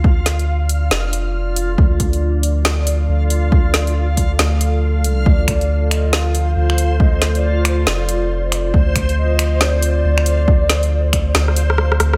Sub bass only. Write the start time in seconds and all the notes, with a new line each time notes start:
Already playing: D2
0.91 F1
1.78 D2
3.09 D2
4.39 D2
4.99 C#2
5.26 D2
6.56 D2
7.87 F1
8.74 D2
10.04 D2
11.35 D2
12.00 D2